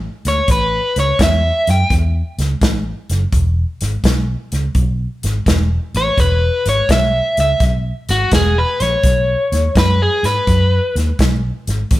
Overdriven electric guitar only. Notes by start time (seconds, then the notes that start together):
0.28 C#5
0.51 B4
1.00 C#5
1.23 E5
1.71 G5
5.97 C#5
6.20 B4
6.69 C#5
6.92 E5
7.40 E5
8.11 F#4
8.34 G#4
8.58 B4
8.82 C#5
9.78 B4
10.02 G#4
10.25 B4